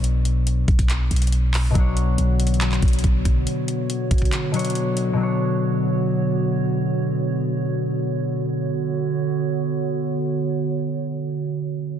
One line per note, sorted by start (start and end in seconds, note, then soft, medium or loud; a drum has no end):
0.00 0.65 B1 loud
0.00 1.69 B2 medium
0.00 1.72 F#3 medium
0.00 1.72 D4 medium
0.00 1.74 C#5 medium
0.00 closed hi-hat medium
0.25 closed hi-hat medium
0.47 closed hi-hat medium
0.68 0.78 B1 loud
0.68 kick loud
0.68 closed hi-hat medium
0.79 1.10 B1 loud
0.79 kick medium
0.79 closed hi-hat medium
0.90 clap loud
0.90 closed hi-hat medium
1.11 1.73 B1 loud
1.11 closed hi-hat medium
1.16 closed hi-hat medium
1.22 closed hi-hat medium
1.27 closed hi-hat medium
1.32 closed hi-hat medium
1.54 clap medium
1.54 open hi-hat medium
1.70 4.50 B2 medium
1.70 4.52 F#3 medium
1.75 2.16 B1 loud
1.75 8.57 D3 medium
1.75 8.57 B3 medium
1.75 4.54 D4 medium
1.75 8.57 F#4 medium
1.75 8.57 C#5 medium
1.75 kick loud
1.75 closed hi-hat medium
1.80 4.52 C#5 medium
1.97 closed hi-hat medium
2.18 2.80 B1 loud
2.18 closed hi-hat medium
2.40 closed hi-hat medium
2.47 closed hi-hat medium
2.54 closed hi-hat soft
2.61 clap loud
2.61 closed hi-hat medium
2.72 clap loud
2.82 3.03 B1 loud
2.82 kick loud
2.82 closed hi-hat medium
2.88 closed hi-hat medium
2.93 closed hi-hat medium
2.99 closed hi-hat medium
3.04 3.24 B1 loud
3.04 kick medium
3.04 closed hi-hat medium
3.25 3.46 B1 loud
3.25 kick medium
3.25 closed hi-hat medium
3.47 closed hi-hat medium
3.68 closed hi-hat medium
3.90 closed hi-hat medium
4.11 kick loud
4.11 closed hi-hat medium
4.18 kick medium
4.18 closed hi-hat medium
4.25 closed hi-hat soft
4.32 clap loud
4.32 closed hi-hat medium
4.51 5.12 B2 medium
4.51 5.15 F#3 medium
4.51 5.19 D4 medium
4.51 closed hi-hat medium
4.56 5.23 C#5 medium
4.56 closed hi-hat medium
4.65 closed hi-hat medium
4.70 closed hi-hat medium
4.75 closed hi-hat medium
4.97 closed hi-hat medium
5.13 8.66 B2 medium
5.13 8.66 F#3 medium
5.20 8.58 D4 medium
5.20 8.59 C#5 medium
8.61 11.99 D3 medium
8.61 11.99 B3 medium
8.61 11.99 F#4 medium
8.61 11.99 C#5 medium